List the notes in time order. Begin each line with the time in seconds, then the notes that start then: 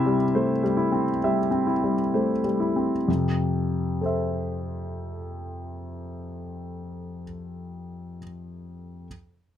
Already playing: C3 C4 E4 E5
0.06 G3
0.35 A3 C5
0.63 G3
0.77 E4
0.92 C4
1.24 G3 E5
1.51 C4
1.67 E4
1.84 G3
2.14 A3 C5
2.44 G3
2.60 E4
2.76 C4
3.08 F2 C3
4.01 A4 C5
4.06 E5